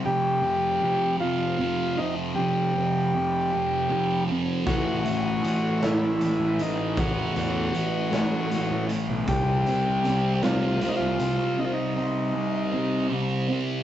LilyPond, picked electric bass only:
\new Staff \with { instrumentName = "Picked electric bass" } { \clef bass \time 6/8 \key f \dorian \tempo 4. = 52 r2. | r2. | a,,8 a,,4.~ a,,16 a,,16 a,,8 | r8 e,8 r4 r16 a,16 r16 b,,16 |
c,8 c,4.~ c,16 c,16 c,16 r16 | r2. | }